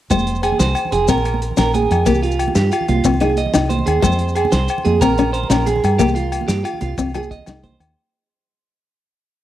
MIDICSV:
0, 0, Header, 1, 5, 480
1, 0, Start_track
1, 0, Key_signature, -4, "minor"
1, 0, Tempo, 327511
1, 158, Time_signature, 12, 3, 24, 8
1, 13826, End_track
2, 0, Start_track
2, 0, Title_t, "Clean electric guitar"
2, 0, Program_c, 0, 27
2, 164, Note_on_c, 0, 72, 84
2, 615, Note_off_c, 0, 72, 0
2, 637, Note_on_c, 0, 68, 68
2, 864, Note_off_c, 0, 68, 0
2, 873, Note_on_c, 0, 72, 77
2, 1328, Note_off_c, 0, 72, 0
2, 1354, Note_on_c, 0, 68, 77
2, 1581, Note_off_c, 0, 68, 0
2, 1599, Note_on_c, 0, 70, 81
2, 2051, Note_off_c, 0, 70, 0
2, 2314, Note_on_c, 0, 70, 77
2, 2540, Note_off_c, 0, 70, 0
2, 2550, Note_on_c, 0, 68, 64
2, 3006, Note_off_c, 0, 68, 0
2, 3024, Note_on_c, 0, 67, 84
2, 3254, Note_off_c, 0, 67, 0
2, 3260, Note_on_c, 0, 65, 72
2, 3720, Note_off_c, 0, 65, 0
2, 3741, Note_on_c, 0, 67, 77
2, 3973, Note_off_c, 0, 67, 0
2, 3982, Note_on_c, 0, 65, 70
2, 4214, Note_off_c, 0, 65, 0
2, 4228, Note_on_c, 0, 65, 73
2, 4685, Note_off_c, 0, 65, 0
2, 4699, Note_on_c, 0, 68, 66
2, 4932, Note_off_c, 0, 68, 0
2, 4947, Note_on_c, 0, 75, 67
2, 5405, Note_off_c, 0, 75, 0
2, 5413, Note_on_c, 0, 72, 62
2, 5650, Note_off_c, 0, 72, 0
2, 5656, Note_on_c, 0, 68, 77
2, 5891, Note_off_c, 0, 68, 0
2, 5897, Note_on_c, 0, 72, 82
2, 6360, Note_off_c, 0, 72, 0
2, 6380, Note_on_c, 0, 68, 70
2, 6614, Note_off_c, 0, 68, 0
2, 6623, Note_on_c, 0, 72, 74
2, 7084, Note_off_c, 0, 72, 0
2, 7103, Note_on_c, 0, 68, 73
2, 7336, Note_off_c, 0, 68, 0
2, 7344, Note_on_c, 0, 70, 81
2, 7805, Note_off_c, 0, 70, 0
2, 7813, Note_on_c, 0, 72, 69
2, 8051, Note_off_c, 0, 72, 0
2, 8061, Note_on_c, 0, 70, 72
2, 8296, Note_off_c, 0, 70, 0
2, 8299, Note_on_c, 0, 68, 64
2, 8764, Note_off_c, 0, 68, 0
2, 8771, Note_on_c, 0, 67, 86
2, 9006, Note_off_c, 0, 67, 0
2, 9012, Note_on_c, 0, 65, 71
2, 9480, Note_off_c, 0, 65, 0
2, 9493, Note_on_c, 0, 67, 84
2, 9727, Note_off_c, 0, 67, 0
2, 9732, Note_on_c, 0, 65, 68
2, 9966, Note_off_c, 0, 65, 0
2, 9983, Note_on_c, 0, 65, 68
2, 10447, Note_off_c, 0, 65, 0
2, 10477, Note_on_c, 0, 68, 66
2, 10706, Note_off_c, 0, 68, 0
2, 10711, Note_on_c, 0, 75, 68
2, 11171, Note_off_c, 0, 75, 0
2, 11188, Note_on_c, 0, 72, 59
2, 11421, Note_off_c, 0, 72, 0
2, 13826, End_track
3, 0, Start_track
3, 0, Title_t, "Nylon-string guitar"
3, 0, Program_c, 1, 24
3, 169, Note_on_c, 1, 56, 83
3, 510, Note_off_c, 1, 56, 0
3, 1586, Note_on_c, 1, 60, 77
3, 1761, Note_off_c, 1, 60, 0
3, 2301, Note_on_c, 1, 61, 75
3, 2651, Note_off_c, 1, 61, 0
3, 3021, Note_on_c, 1, 58, 80
3, 3370, Note_off_c, 1, 58, 0
3, 4469, Note_on_c, 1, 60, 78
3, 4643, Note_off_c, 1, 60, 0
3, 4705, Note_on_c, 1, 63, 75
3, 5054, Note_off_c, 1, 63, 0
3, 5196, Note_on_c, 1, 63, 76
3, 5541, Note_off_c, 1, 63, 0
3, 5896, Note_on_c, 1, 56, 88
3, 6248, Note_off_c, 1, 56, 0
3, 7361, Note_on_c, 1, 60, 82
3, 7532, Note_off_c, 1, 60, 0
3, 7603, Note_on_c, 1, 61, 74
3, 7946, Note_off_c, 1, 61, 0
3, 8073, Note_on_c, 1, 61, 76
3, 8420, Note_off_c, 1, 61, 0
3, 8782, Note_on_c, 1, 58, 90
3, 9134, Note_off_c, 1, 58, 0
3, 10239, Note_on_c, 1, 60, 72
3, 10412, Note_off_c, 1, 60, 0
3, 10484, Note_on_c, 1, 68, 75
3, 10828, Note_off_c, 1, 68, 0
3, 10976, Note_on_c, 1, 63, 78
3, 11316, Note_off_c, 1, 63, 0
3, 13826, End_track
4, 0, Start_track
4, 0, Title_t, "Fingered electric bass"
4, 0, Program_c, 2, 33
4, 155, Note_on_c, 2, 29, 84
4, 770, Note_off_c, 2, 29, 0
4, 879, Note_on_c, 2, 36, 93
4, 1082, Note_off_c, 2, 36, 0
4, 1351, Note_on_c, 2, 29, 84
4, 1557, Note_off_c, 2, 29, 0
4, 1597, Note_on_c, 2, 34, 78
4, 2210, Note_off_c, 2, 34, 0
4, 2318, Note_on_c, 2, 34, 85
4, 2725, Note_off_c, 2, 34, 0
4, 2798, Note_on_c, 2, 41, 82
4, 3000, Note_off_c, 2, 41, 0
4, 3028, Note_on_c, 2, 36, 89
4, 3645, Note_off_c, 2, 36, 0
4, 3745, Note_on_c, 2, 43, 101
4, 3952, Note_off_c, 2, 43, 0
4, 4232, Note_on_c, 2, 36, 87
4, 4436, Note_off_c, 2, 36, 0
4, 4468, Note_on_c, 2, 36, 88
4, 5085, Note_off_c, 2, 36, 0
4, 5203, Note_on_c, 2, 36, 91
4, 5609, Note_off_c, 2, 36, 0
4, 5675, Note_on_c, 2, 39, 77
4, 5879, Note_off_c, 2, 39, 0
4, 5909, Note_on_c, 2, 41, 92
4, 6527, Note_off_c, 2, 41, 0
4, 6639, Note_on_c, 2, 36, 101
4, 6842, Note_off_c, 2, 36, 0
4, 7122, Note_on_c, 2, 41, 85
4, 7324, Note_off_c, 2, 41, 0
4, 7353, Note_on_c, 2, 34, 82
4, 7970, Note_off_c, 2, 34, 0
4, 8064, Note_on_c, 2, 34, 95
4, 8480, Note_off_c, 2, 34, 0
4, 8558, Note_on_c, 2, 43, 86
4, 8763, Note_off_c, 2, 43, 0
4, 8790, Note_on_c, 2, 36, 82
4, 9410, Note_off_c, 2, 36, 0
4, 9504, Note_on_c, 2, 43, 96
4, 9715, Note_off_c, 2, 43, 0
4, 9993, Note_on_c, 2, 36, 82
4, 10201, Note_off_c, 2, 36, 0
4, 10230, Note_on_c, 2, 36, 77
4, 10850, Note_off_c, 2, 36, 0
4, 10956, Note_on_c, 2, 36, 93
4, 11368, Note_off_c, 2, 36, 0
4, 11431, Note_on_c, 2, 39, 84
4, 11640, Note_off_c, 2, 39, 0
4, 13826, End_track
5, 0, Start_track
5, 0, Title_t, "Drums"
5, 155, Note_on_c, 9, 42, 58
5, 157, Note_on_c, 9, 36, 80
5, 157, Note_on_c, 9, 70, 77
5, 158, Note_on_c, 9, 63, 76
5, 161, Note_on_c, 9, 68, 61
5, 272, Note_on_c, 9, 64, 60
5, 276, Note_off_c, 9, 70, 0
5, 276, Note_on_c, 9, 70, 25
5, 302, Note_off_c, 9, 42, 0
5, 303, Note_off_c, 9, 36, 0
5, 304, Note_off_c, 9, 63, 0
5, 307, Note_off_c, 9, 68, 0
5, 395, Note_on_c, 9, 42, 46
5, 419, Note_off_c, 9, 64, 0
5, 423, Note_off_c, 9, 70, 0
5, 516, Note_on_c, 9, 70, 26
5, 542, Note_off_c, 9, 42, 0
5, 632, Note_on_c, 9, 42, 48
5, 634, Note_on_c, 9, 68, 60
5, 647, Note_on_c, 9, 64, 23
5, 663, Note_off_c, 9, 70, 0
5, 767, Note_off_c, 9, 64, 0
5, 767, Note_on_c, 9, 63, 60
5, 767, Note_on_c, 9, 64, 63
5, 778, Note_off_c, 9, 42, 0
5, 781, Note_off_c, 9, 68, 0
5, 877, Note_on_c, 9, 38, 80
5, 877, Note_on_c, 9, 42, 68
5, 877, Note_on_c, 9, 70, 71
5, 914, Note_off_c, 9, 63, 0
5, 914, Note_off_c, 9, 64, 0
5, 1024, Note_off_c, 9, 38, 0
5, 1024, Note_off_c, 9, 42, 0
5, 1024, Note_off_c, 9, 70, 0
5, 1101, Note_on_c, 9, 68, 59
5, 1107, Note_on_c, 9, 70, 23
5, 1122, Note_on_c, 9, 42, 48
5, 1246, Note_on_c, 9, 64, 68
5, 1248, Note_off_c, 9, 68, 0
5, 1253, Note_off_c, 9, 70, 0
5, 1268, Note_off_c, 9, 42, 0
5, 1353, Note_on_c, 9, 42, 48
5, 1393, Note_off_c, 9, 64, 0
5, 1500, Note_off_c, 9, 42, 0
5, 1582, Note_on_c, 9, 70, 80
5, 1594, Note_on_c, 9, 36, 83
5, 1599, Note_on_c, 9, 42, 66
5, 1608, Note_on_c, 9, 68, 61
5, 1726, Note_on_c, 9, 64, 62
5, 1729, Note_off_c, 9, 70, 0
5, 1741, Note_off_c, 9, 36, 0
5, 1745, Note_off_c, 9, 42, 0
5, 1755, Note_off_c, 9, 68, 0
5, 1836, Note_on_c, 9, 42, 45
5, 1840, Note_on_c, 9, 68, 56
5, 1873, Note_off_c, 9, 64, 0
5, 1963, Note_on_c, 9, 63, 65
5, 1983, Note_off_c, 9, 42, 0
5, 1986, Note_off_c, 9, 68, 0
5, 2081, Note_on_c, 9, 42, 51
5, 2110, Note_off_c, 9, 63, 0
5, 2211, Note_on_c, 9, 64, 64
5, 2227, Note_off_c, 9, 42, 0
5, 2301, Note_on_c, 9, 70, 82
5, 2320, Note_on_c, 9, 68, 55
5, 2324, Note_on_c, 9, 38, 84
5, 2324, Note_on_c, 9, 42, 64
5, 2358, Note_off_c, 9, 64, 0
5, 2448, Note_off_c, 9, 70, 0
5, 2466, Note_off_c, 9, 68, 0
5, 2471, Note_off_c, 9, 38, 0
5, 2471, Note_off_c, 9, 42, 0
5, 2545, Note_on_c, 9, 70, 25
5, 2557, Note_on_c, 9, 42, 46
5, 2561, Note_on_c, 9, 63, 88
5, 2561, Note_on_c, 9, 64, 27
5, 2672, Note_off_c, 9, 64, 0
5, 2672, Note_on_c, 9, 64, 73
5, 2692, Note_off_c, 9, 70, 0
5, 2704, Note_off_c, 9, 42, 0
5, 2707, Note_off_c, 9, 63, 0
5, 2790, Note_off_c, 9, 64, 0
5, 2790, Note_on_c, 9, 64, 28
5, 2795, Note_on_c, 9, 42, 47
5, 2813, Note_on_c, 9, 68, 61
5, 2937, Note_off_c, 9, 64, 0
5, 2941, Note_off_c, 9, 42, 0
5, 2959, Note_off_c, 9, 68, 0
5, 3019, Note_on_c, 9, 63, 95
5, 3020, Note_on_c, 9, 70, 84
5, 3027, Note_on_c, 9, 36, 80
5, 3027, Note_on_c, 9, 68, 63
5, 3031, Note_on_c, 9, 42, 59
5, 3141, Note_off_c, 9, 70, 0
5, 3141, Note_on_c, 9, 70, 25
5, 3146, Note_on_c, 9, 64, 67
5, 3166, Note_off_c, 9, 63, 0
5, 3173, Note_off_c, 9, 36, 0
5, 3174, Note_off_c, 9, 68, 0
5, 3177, Note_off_c, 9, 42, 0
5, 3272, Note_on_c, 9, 42, 43
5, 3288, Note_off_c, 9, 70, 0
5, 3293, Note_off_c, 9, 64, 0
5, 3390, Note_on_c, 9, 70, 25
5, 3419, Note_off_c, 9, 42, 0
5, 3507, Note_on_c, 9, 68, 62
5, 3512, Note_on_c, 9, 42, 46
5, 3518, Note_on_c, 9, 64, 28
5, 3536, Note_off_c, 9, 70, 0
5, 3630, Note_off_c, 9, 64, 0
5, 3630, Note_on_c, 9, 63, 72
5, 3630, Note_on_c, 9, 64, 70
5, 3654, Note_off_c, 9, 68, 0
5, 3658, Note_off_c, 9, 42, 0
5, 3741, Note_on_c, 9, 38, 78
5, 3741, Note_on_c, 9, 42, 61
5, 3743, Note_on_c, 9, 70, 77
5, 3776, Note_off_c, 9, 63, 0
5, 3776, Note_off_c, 9, 64, 0
5, 3888, Note_off_c, 9, 38, 0
5, 3888, Note_off_c, 9, 42, 0
5, 3890, Note_off_c, 9, 70, 0
5, 3979, Note_on_c, 9, 70, 27
5, 3990, Note_on_c, 9, 42, 46
5, 3999, Note_on_c, 9, 68, 64
5, 4113, Note_on_c, 9, 64, 70
5, 4126, Note_off_c, 9, 70, 0
5, 4136, Note_off_c, 9, 42, 0
5, 4146, Note_off_c, 9, 68, 0
5, 4226, Note_on_c, 9, 42, 43
5, 4238, Note_on_c, 9, 63, 83
5, 4260, Note_off_c, 9, 64, 0
5, 4372, Note_off_c, 9, 42, 0
5, 4384, Note_off_c, 9, 63, 0
5, 4452, Note_on_c, 9, 42, 64
5, 4460, Note_on_c, 9, 70, 77
5, 4463, Note_on_c, 9, 36, 78
5, 4483, Note_on_c, 9, 68, 61
5, 4599, Note_off_c, 9, 42, 0
5, 4599, Note_on_c, 9, 64, 73
5, 4607, Note_off_c, 9, 70, 0
5, 4609, Note_off_c, 9, 36, 0
5, 4629, Note_off_c, 9, 68, 0
5, 4693, Note_on_c, 9, 42, 47
5, 4710, Note_on_c, 9, 68, 58
5, 4745, Note_off_c, 9, 64, 0
5, 4830, Note_on_c, 9, 63, 71
5, 4840, Note_off_c, 9, 42, 0
5, 4857, Note_off_c, 9, 68, 0
5, 4937, Note_on_c, 9, 42, 50
5, 4977, Note_off_c, 9, 63, 0
5, 5068, Note_on_c, 9, 64, 77
5, 5083, Note_off_c, 9, 42, 0
5, 5182, Note_on_c, 9, 38, 85
5, 5182, Note_on_c, 9, 42, 68
5, 5185, Note_on_c, 9, 68, 61
5, 5190, Note_on_c, 9, 70, 80
5, 5215, Note_off_c, 9, 64, 0
5, 5329, Note_off_c, 9, 38, 0
5, 5329, Note_off_c, 9, 42, 0
5, 5331, Note_off_c, 9, 68, 0
5, 5337, Note_off_c, 9, 70, 0
5, 5422, Note_on_c, 9, 42, 54
5, 5425, Note_on_c, 9, 63, 89
5, 5425, Note_on_c, 9, 64, 28
5, 5438, Note_on_c, 9, 70, 24
5, 5550, Note_off_c, 9, 64, 0
5, 5550, Note_on_c, 9, 64, 79
5, 5568, Note_off_c, 9, 42, 0
5, 5572, Note_off_c, 9, 63, 0
5, 5585, Note_off_c, 9, 70, 0
5, 5667, Note_on_c, 9, 42, 55
5, 5683, Note_on_c, 9, 68, 61
5, 5688, Note_off_c, 9, 64, 0
5, 5688, Note_on_c, 9, 64, 29
5, 5813, Note_off_c, 9, 42, 0
5, 5830, Note_off_c, 9, 68, 0
5, 5834, Note_off_c, 9, 64, 0
5, 5900, Note_on_c, 9, 42, 65
5, 5908, Note_on_c, 9, 36, 82
5, 5911, Note_on_c, 9, 63, 91
5, 5917, Note_on_c, 9, 68, 58
5, 5918, Note_on_c, 9, 70, 89
5, 6033, Note_off_c, 9, 70, 0
5, 6033, Note_on_c, 9, 70, 28
5, 6046, Note_off_c, 9, 42, 0
5, 6047, Note_on_c, 9, 64, 75
5, 6055, Note_off_c, 9, 36, 0
5, 6058, Note_off_c, 9, 63, 0
5, 6064, Note_off_c, 9, 68, 0
5, 6137, Note_on_c, 9, 42, 50
5, 6180, Note_off_c, 9, 70, 0
5, 6194, Note_off_c, 9, 64, 0
5, 6277, Note_on_c, 9, 70, 29
5, 6283, Note_off_c, 9, 42, 0
5, 6384, Note_on_c, 9, 42, 49
5, 6397, Note_on_c, 9, 64, 31
5, 6397, Note_on_c, 9, 68, 63
5, 6423, Note_off_c, 9, 70, 0
5, 6520, Note_off_c, 9, 64, 0
5, 6520, Note_on_c, 9, 63, 71
5, 6520, Note_on_c, 9, 64, 73
5, 6530, Note_off_c, 9, 42, 0
5, 6544, Note_off_c, 9, 68, 0
5, 6626, Note_on_c, 9, 70, 85
5, 6628, Note_on_c, 9, 38, 86
5, 6628, Note_on_c, 9, 42, 67
5, 6666, Note_off_c, 9, 63, 0
5, 6666, Note_off_c, 9, 64, 0
5, 6772, Note_off_c, 9, 70, 0
5, 6774, Note_off_c, 9, 38, 0
5, 6774, Note_off_c, 9, 42, 0
5, 6861, Note_on_c, 9, 42, 47
5, 6864, Note_on_c, 9, 70, 27
5, 6887, Note_on_c, 9, 68, 64
5, 7003, Note_on_c, 9, 64, 71
5, 7008, Note_off_c, 9, 42, 0
5, 7010, Note_off_c, 9, 70, 0
5, 7034, Note_off_c, 9, 68, 0
5, 7107, Note_on_c, 9, 42, 42
5, 7115, Note_on_c, 9, 63, 86
5, 7150, Note_off_c, 9, 64, 0
5, 7254, Note_off_c, 9, 42, 0
5, 7261, Note_off_c, 9, 63, 0
5, 7342, Note_on_c, 9, 42, 61
5, 7347, Note_on_c, 9, 36, 85
5, 7350, Note_on_c, 9, 70, 87
5, 7356, Note_on_c, 9, 68, 65
5, 7477, Note_on_c, 9, 64, 73
5, 7488, Note_off_c, 9, 42, 0
5, 7494, Note_off_c, 9, 36, 0
5, 7497, Note_off_c, 9, 70, 0
5, 7502, Note_off_c, 9, 68, 0
5, 7587, Note_on_c, 9, 42, 43
5, 7610, Note_on_c, 9, 68, 58
5, 7624, Note_off_c, 9, 64, 0
5, 7734, Note_off_c, 9, 42, 0
5, 7757, Note_off_c, 9, 68, 0
5, 7823, Note_on_c, 9, 42, 49
5, 7963, Note_on_c, 9, 64, 73
5, 7970, Note_off_c, 9, 42, 0
5, 8058, Note_on_c, 9, 38, 90
5, 8058, Note_on_c, 9, 42, 64
5, 8069, Note_on_c, 9, 70, 89
5, 8088, Note_on_c, 9, 68, 61
5, 8110, Note_off_c, 9, 64, 0
5, 8204, Note_off_c, 9, 38, 0
5, 8204, Note_off_c, 9, 42, 0
5, 8215, Note_off_c, 9, 70, 0
5, 8235, Note_off_c, 9, 68, 0
5, 8302, Note_on_c, 9, 42, 47
5, 8310, Note_on_c, 9, 70, 28
5, 8311, Note_on_c, 9, 63, 84
5, 8311, Note_on_c, 9, 64, 27
5, 8439, Note_off_c, 9, 64, 0
5, 8439, Note_on_c, 9, 64, 75
5, 8448, Note_off_c, 9, 42, 0
5, 8457, Note_off_c, 9, 70, 0
5, 8458, Note_off_c, 9, 63, 0
5, 8553, Note_on_c, 9, 42, 48
5, 8556, Note_off_c, 9, 64, 0
5, 8556, Note_on_c, 9, 64, 28
5, 8568, Note_on_c, 9, 68, 62
5, 8699, Note_off_c, 9, 42, 0
5, 8703, Note_off_c, 9, 64, 0
5, 8715, Note_off_c, 9, 68, 0
5, 8777, Note_on_c, 9, 42, 62
5, 8785, Note_on_c, 9, 36, 84
5, 8789, Note_on_c, 9, 63, 92
5, 8790, Note_on_c, 9, 70, 96
5, 8794, Note_on_c, 9, 68, 63
5, 8913, Note_off_c, 9, 70, 0
5, 8913, Note_on_c, 9, 70, 28
5, 8916, Note_on_c, 9, 64, 67
5, 8923, Note_off_c, 9, 42, 0
5, 8931, Note_off_c, 9, 36, 0
5, 8935, Note_off_c, 9, 63, 0
5, 8940, Note_off_c, 9, 68, 0
5, 9022, Note_on_c, 9, 42, 49
5, 9060, Note_off_c, 9, 70, 0
5, 9063, Note_off_c, 9, 64, 0
5, 9168, Note_off_c, 9, 42, 0
5, 9265, Note_on_c, 9, 68, 62
5, 9269, Note_on_c, 9, 42, 48
5, 9395, Note_on_c, 9, 63, 71
5, 9395, Note_on_c, 9, 64, 69
5, 9411, Note_off_c, 9, 68, 0
5, 9416, Note_off_c, 9, 42, 0
5, 9503, Note_on_c, 9, 38, 86
5, 9503, Note_on_c, 9, 42, 70
5, 9511, Note_on_c, 9, 70, 89
5, 9542, Note_off_c, 9, 63, 0
5, 9542, Note_off_c, 9, 64, 0
5, 9649, Note_off_c, 9, 38, 0
5, 9649, Note_off_c, 9, 42, 0
5, 9658, Note_off_c, 9, 70, 0
5, 9747, Note_on_c, 9, 68, 67
5, 9748, Note_on_c, 9, 42, 52
5, 9872, Note_on_c, 9, 64, 64
5, 9893, Note_off_c, 9, 68, 0
5, 9894, Note_off_c, 9, 42, 0
5, 9979, Note_off_c, 9, 64, 0
5, 9979, Note_on_c, 9, 63, 81
5, 9979, Note_on_c, 9, 64, 26
5, 9983, Note_on_c, 9, 42, 45
5, 10126, Note_off_c, 9, 63, 0
5, 10126, Note_off_c, 9, 64, 0
5, 10129, Note_off_c, 9, 42, 0
5, 10227, Note_on_c, 9, 42, 63
5, 10228, Note_on_c, 9, 36, 87
5, 10230, Note_on_c, 9, 68, 57
5, 10233, Note_on_c, 9, 70, 79
5, 10348, Note_on_c, 9, 64, 74
5, 10373, Note_off_c, 9, 42, 0
5, 10375, Note_off_c, 9, 36, 0
5, 10377, Note_off_c, 9, 68, 0
5, 10379, Note_off_c, 9, 70, 0
5, 10470, Note_on_c, 9, 42, 47
5, 10473, Note_on_c, 9, 68, 60
5, 10495, Note_off_c, 9, 64, 0
5, 10593, Note_on_c, 9, 63, 62
5, 10596, Note_on_c, 9, 70, 28
5, 10616, Note_off_c, 9, 42, 0
5, 10620, Note_off_c, 9, 68, 0
5, 10713, Note_on_c, 9, 36, 63
5, 10719, Note_on_c, 9, 42, 48
5, 10739, Note_off_c, 9, 63, 0
5, 10743, Note_off_c, 9, 70, 0
5, 10826, Note_on_c, 9, 64, 64
5, 10859, Note_off_c, 9, 36, 0
5, 10865, Note_off_c, 9, 42, 0
5, 10940, Note_on_c, 9, 68, 60
5, 10951, Note_on_c, 9, 70, 83
5, 10952, Note_on_c, 9, 38, 85
5, 10952, Note_on_c, 9, 42, 66
5, 10973, Note_off_c, 9, 64, 0
5, 11086, Note_off_c, 9, 68, 0
5, 11098, Note_off_c, 9, 38, 0
5, 11098, Note_off_c, 9, 42, 0
5, 11098, Note_off_c, 9, 70, 0
5, 11187, Note_on_c, 9, 63, 83
5, 11187, Note_on_c, 9, 64, 26
5, 11192, Note_on_c, 9, 42, 48
5, 11193, Note_on_c, 9, 36, 64
5, 11310, Note_off_c, 9, 64, 0
5, 11310, Note_on_c, 9, 64, 71
5, 11334, Note_off_c, 9, 63, 0
5, 11339, Note_off_c, 9, 36, 0
5, 11339, Note_off_c, 9, 42, 0
5, 11438, Note_on_c, 9, 68, 61
5, 11440, Note_on_c, 9, 42, 50
5, 11457, Note_off_c, 9, 64, 0
5, 11584, Note_off_c, 9, 68, 0
5, 11587, Note_off_c, 9, 42, 0
5, 13826, End_track
0, 0, End_of_file